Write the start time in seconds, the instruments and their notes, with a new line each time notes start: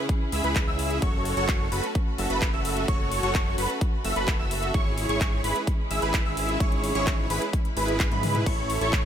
Already playing: string section C#3 C#4 E4 G#4
0.09 kick, closed hi-hat
0.32 analog synth bass C#2, supersaw synth E4 G#4 E5, digital synth lead E6, open hi-hat
0.44 analog synth bass C#2, supersaw synth E4 G#4 B4, digital synth lead B5, closed hi-hat
0.56 kick, clap, closed hi-hat
0.67 analog synth bass C#2, supersaw synth E4 G#4 E5, digital synth lead E6
0.79 open hi-hat
0.91 closed hi-hat
1.02 analog synth bass F#1, string section A3 F#4, supersaw synth F#4 A4 C#5, digital synth lead C#6, kick, closed hi-hat
1.25 open hi-hat
1.37 analog synth bass F#1, supersaw synth F#4 A4 C#5, digital synth lead C#6, closed hi-hat
1.49 kick, clap, closed hi-hat
1.72 analog synth bass F#1, supersaw synth F#4 A4 B4, digital synth lead B5, open hi-hat
1.84 closed hi-hat
1.95 kick, closed hi-hat
2.18 analog synth bass F#1, supersaw synth F#4 A4 E5, digital synth lead E6, open hi-hat
2.30 analog synth bass F#1, supersaw synth F#4 A4 B4, digital synth lead B5, closed hi-hat
2.42 kick, clap, closed hi-hat
2.53 analog synth bass F#1, supersaw synth F#4 A4 E5, digital synth lead E6
2.65 open hi-hat
2.77 closed hi-hat
2.88 analog synth bass F#1, supersaw synth F#4 A4 C#5, digital synth lead C#6, kick, closed hi-hat
3.12 open hi-hat
3.23 analog synth bass F#1, supersaw synth F#4 A4 C#5, digital synth lead C#6, closed hi-hat
3.35 kick, clap, closed hi-hat
3.58 analog synth bass F#1, supersaw synth F#4 A4 B4, digital synth lead B5, open hi-hat
3.70 closed hi-hat
3.81 kick, closed hi-hat
4.04 analog synth bass F#1, supersaw synth F#4 A4 E5, digital synth lead E6, open hi-hat
4.16 analog synth bass F#1, supersaw synth F#4 A4 B4, digital synth lead B5, closed hi-hat
4.28 kick, clap, closed hi-hat
4.39 analog synth bass F#1, supersaw synth F#4 A4 E5, digital synth lead E6
4.51 open hi-hat
4.63 closed hi-hat
4.74 analog synth bass G#1, string section G#3 C#4 E4, supersaw synth E4 G#4 C#5, digital synth lead C#6, kick, closed hi-hat
4.98 open hi-hat
5.09 analog synth bass G#1, supersaw synth E4 G#4 C#5, digital synth lead C#6, closed hi-hat
5.21 kick, clap, closed hi-hat
5.44 analog synth bass G#1, supersaw synth E4 G#4 B4, digital synth lead B5, open hi-hat
5.56 closed hi-hat
5.67 kick, closed hi-hat
5.91 analog synth bass G#1, supersaw synth E4 G#4 E5, digital synth lead E6, open hi-hat
6.02 analog synth bass G#1, supersaw synth E4 G#4 B4, digital synth lead B5, closed hi-hat
6.14 kick, clap, closed hi-hat
6.25 analog synth bass G#1, supersaw synth E4 G#4 E5, digital synth lead E6
6.37 open hi-hat
6.49 closed hi-hat
6.60 analog synth bass G#1, supersaw synth E4 G#4 C#5, digital synth lead C#6, kick, closed hi-hat
6.72 closed hi-hat
6.84 open hi-hat
6.95 analog synth bass G#1, supersaw synth E4 G#4 C#5, digital synth lead C#6, closed hi-hat
7.07 kick, clap, closed hi-hat
7.30 analog synth bass G#1, supersaw synth E4 G#4 B4, digital synth lead B5, open hi-hat
7.42 closed hi-hat
7.53 kick, closed hi-hat
7.65 closed hi-hat
7.77 analog synth bass G#1, supersaw synth E4 G#4 B4, digital synth lead B5, open hi-hat
7.88 closed hi-hat
8.00 kick, clap, closed hi-hat
8.11 analog synth bass G#2, supersaw synth E4 G#4 B4, digital synth lead B5, closed hi-hat, high tom
8.23 open hi-hat, mid tom
8.35 closed hi-hat, mid tom
8.46 analog synth bass A1, string section A3, supersaw synth E4 A4 C#5, digital synth lead C#6, kick, closed hi-hat, crash
8.70 open hi-hat
8.81 analog synth bass A1, supersaw synth E4 A4 C#5, digital synth lead C#6, closed hi-hat
8.93 kick, clap, closed hi-hat